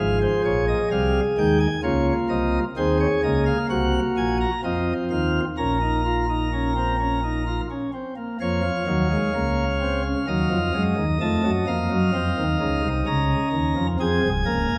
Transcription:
0.00 0.27 G#1 medium
0.00 0.27 G#2 medium
0.00 0.78 F3 medium
0.00 1.58 G#4 medium
0.00 0.18 F5 medium
0.22 0.42 C5 medium
0.45 0.74 A#1 medium
0.45 0.74 A#2 medium
0.45 0.65 C#5 medium
0.68 0.88 D#5 medium
0.91 1.20 C2 medium
0.91 1.20 C3 medium
0.91 1.20 G3 medium
0.91 1.20 F5 medium
1.38 1.67 D#2 medium
1.38 1.67 D#3 medium
1.38 1.67 G#3 medium
1.38 1.58 G5 medium
1.60 1.80 G#5 medium
1.83 2.13 C#2 medium
1.83 2.13 C#3 medium
1.83 2.64 A#3 medium
1.83 2.64 F4 medium
1.83 2.13 C#5 medium
2.29 2.59 C2 medium
2.29 2.59 C3 medium
2.29 2.59 D#5 medium
2.77 3.06 D#2 medium
2.77 3.06 D#3 medium
2.77 3.06 C4 medium
2.77 3.57 G#4 medium
2.77 2.97 C5 medium
3.00 3.21 C#5 medium
3.23 3.52 C#2 medium
3.23 3.53 C#3 medium
3.23 4.44 A#3 medium
3.23 3.44 D#5 medium
3.46 3.67 F5 medium
3.70 3.99 C2 medium
3.70 3.99 C3 medium
3.70 4.51 F#4 medium
3.70 3.99 F#5 medium
4.17 4.46 A#1 medium
4.17 4.46 A#2 medium
4.17 4.37 G#5 medium
4.41 4.61 A#5 medium
4.64 4.93 F2 medium
4.64 4.93 F3 medium
4.64 5.45 C4 medium
4.64 5.45 F4 medium
4.64 4.93 D#5 medium
5.11 5.40 D#2 medium
5.11 5.40 D#3 medium
5.11 5.40 F5 medium
5.57 7.61 A#1 medium
5.57 7.61 A#2 medium
5.57 5.78 C#4 medium
5.57 7.61 A#4 medium
5.57 7.61 A#5 medium
5.81 6.02 D#4 medium
6.06 6.26 F4 medium
6.29 6.49 D#4 medium
6.53 6.73 C#4 medium
6.76 6.96 C4 medium
7.00 7.20 C#4 medium
7.24 7.44 D#4 soft
7.47 7.67 F4 medium
7.70 7.91 C#4 soft
7.94 8.14 C4 medium
8.17 8.37 A#3 soft
8.41 8.70 F2 medium
8.41 8.61 F3 medium
8.41 8.61 A#3 medium
8.41 10.03 C#5 medium
8.41 10.82 F5 medium
8.63 8.84 F3 medium
8.87 9.17 D#2 medium
8.87 9.17 D#3 medium
8.87 9.08 F#3 medium
9.11 9.31 G#3 medium
9.34 10.15 C#2 medium
9.34 10.15 C#3 medium
9.34 9.64 A#3 medium
9.81 10.02 C4 medium
10.05 10.25 C#4 medium
10.28 10.48 D#2 medium
10.28 10.48 D#3 medium
10.28 10.57 F#3 medium
10.28 13.48 D#5 medium
10.51 10.71 F2 medium
10.51 10.71 F3 medium
10.74 10.95 F#2 medium
10.74 10.95 F#3 medium
10.74 11.03 G#3 medium
10.97 11.18 D#2 medium
10.97 11.18 D#3 medium
11.21 11.41 F2 medium
11.21 11.41 F3 medium
11.21 11.50 A3 medium
11.21 11.50 A5 medium
11.44 11.64 F#2 medium
11.44 11.64 F#3 medium
11.67 11.88 F2 medium
11.67 11.88 F3 medium
11.67 11.96 A#3 medium
11.67 12.88 F5 medium
11.90 12.11 F#2 medium
11.90 12.11 F#3 medium
12.14 12.35 F2 medium
12.14 12.35 F3 medium
12.14 12.43 C4 medium
12.38 12.58 D#2 medium
12.38 12.58 D#3 medium
12.60 12.81 C#2 medium
12.60 12.81 C#3 medium
12.60 12.89 D#4 medium
12.83 13.04 C2 medium
12.83 13.04 C3 medium
13.06 13.36 C#2 medium
13.06 13.36 C#3 medium
13.06 13.87 C#4 medium
13.06 13.87 A#5 medium
13.53 13.73 D#2 medium
13.53 13.73 D#3 medium
13.76 13.97 F2 medium
13.76 13.97 F3 medium
14.00 14.20 F2 medium
14.00 14.20 F3 medium
14.00 14.29 C4 medium
14.00 14.29 G#4 medium
14.00 14.78 G#5 medium
14.23 14.43 C1 medium
14.23 14.43 C2 medium
14.45 14.66 C#1 medium
14.45 14.66 C#2 medium
14.45 14.75 A#3 medium
14.45 14.75 A#4 medium
14.70 14.78 D#1 medium
14.70 14.78 D#2 medium

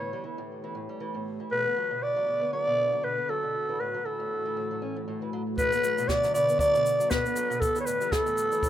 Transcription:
0.00 0.12 A2 medium
0.00 1.51 E3 medium
0.00 1.51 A3 medium
0.00 0.30 B3 medium
0.00 0.30 B4 medium
0.00 0.46 C#5 medium
0.13 0.23 G3 medium
0.24 0.38 E3 medium
0.31 1.51 G4 medium
0.31 1.52 C#5 medium
0.38 0.62 A2 medium
0.64 0.74 E3 medium
0.75 0.88 A2 medium
0.89 0.99 G3 medium
1.00 1.14 E3 medium
1.15 1.39 A2 medium
1.40 1.50 E3 medium
1.51 1.64 B2 medium
1.51 3.55 D3 medium
1.51 2.04 B4 loud
1.65 1.75 B3 medium
1.76 1.90 F#3 medium
1.84 4.37 B3 medium
1.91 2.15 B2 medium
2.03 2.52 D5 loud
2.16 2.26 F#3 medium
2.27 2.40 B2 medium
2.42 2.52 B3 medium
2.42 7.61 F#4 medium
2.42 3.54 D5 medium
2.53 2.66 F#3 medium
2.53 3.06 D5 loud
2.67 2.91 B2 medium
2.93 3.03 F#3 medium
3.03 3.16 B2 medium
3.03 3.31 B4 medium
3.18 3.28 B3 medium
3.29 3.43 F#3 medium
3.29 3.82 A4 medium
3.43 3.55 B2 medium
3.55 5.58 A2 medium
3.69 3.79 E3 medium
3.80 3.93 A2 medium
3.80 4.07 B4 medium
3.94 4.04 F#3 medium
3.94 5.58 A3 medium
3.98 5.58 E3 medium
4.05 4.19 E3 medium
4.05 5.33 A4 medium
4.20 4.44 A2 medium
4.45 4.55 E3 medium
4.45 5.58 C#5 medium
4.57 4.69 A2 medium
4.71 4.81 F#3 medium
4.82 4.95 C#4 medium
4.96 5.06 A2 medium
5.08 5.20 A2 medium
5.22 5.32 E3 medium
5.33 5.41 F#3 medium
5.58 5.71 B2 medium
5.58 7.62 D3 medium
5.58 6.10 B4 loud
5.58 kick loud
5.58 shaker medium
5.72 5.83 B3 medium
5.72 shaker soft
5.84 5.97 F#3 medium
5.84 8.37 B3 loud
5.84 shaker medium
5.98 6.22 B2 medium
5.98 shaker soft
6.08 6.33 D5 loud
6.08 kick loud
6.08 snare loud
6.08 shaker medium
6.23 6.34 F#3 medium
6.23 snare soft
6.23 shaker soft
6.28 7.61 D5 medium
6.34 6.47 B2 medium
6.34 6.58 D5 loud
6.34 shaker medium
6.49 6.59 B3 medium
6.49 shaker medium
6.59 6.73 F#3 medium
6.59 7.11 D5 loud
6.59 kick loud
6.59 shaker medium
6.74 6.98 B2 medium
6.74 shaker soft
6.86 shaker medium
7.00 7.10 F#3 medium
7.00 shaker medium
7.10 7.23 B2 medium
7.10 7.62 B4 loud
7.10 kick loud
7.10 snare loud
7.10 shaker medium
7.25 7.35 B3 medium
7.25 shaker soft
7.36 7.49 F#3 medium
7.36 shaker medium
7.50 7.61 B2 medium
7.50 shaker soft
7.60 8.69 E3 medium
7.60 7.80 A4 medium
7.60 kick loud
7.60 shaker medium
7.75 7.86 E3 medium
7.75 shaker soft
7.80 7.87 C#5 medium
7.86 8.00 A2 medium
7.86 8.13 B4 loud
7.86 shaker medium
8.01 8.11 G3 medium
8.01 shaker medium
8.12 8.26 E3 medium
8.12 8.69 A4 medium
8.12 kick loud
8.12 snare medium
8.12 shaker medium
8.18 8.69 A3 medium
8.26 8.51 A2 medium
8.26 shaker soft
8.37 shaker medium
8.44 8.69 G4 medium
8.52 8.62 E3 medium
8.52 8.69 C#5 medium
8.52 shaker soft
8.63 8.69 A2 medium
8.63 kick loud
8.63 shaker medium

